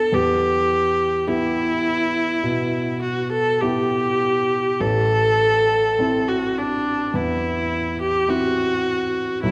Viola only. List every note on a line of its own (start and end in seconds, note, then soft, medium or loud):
0.00 0.15 A4 medium
0.13 1.29 G4 medium
1.28 3.01 E4 medium
3.01 3.31 F#4 medium
3.32 3.62 A4 medium
3.60 4.82 G4 medium
4.81 6.30 A4 medium
6.28 6.60 F#4 medium
6.58 7.16 D4 medium
7.15 8.00 E4 medium
8.01 8.31 G4 medium
8.29 9.42 F#4 medium
9.42 9.51 E4 medium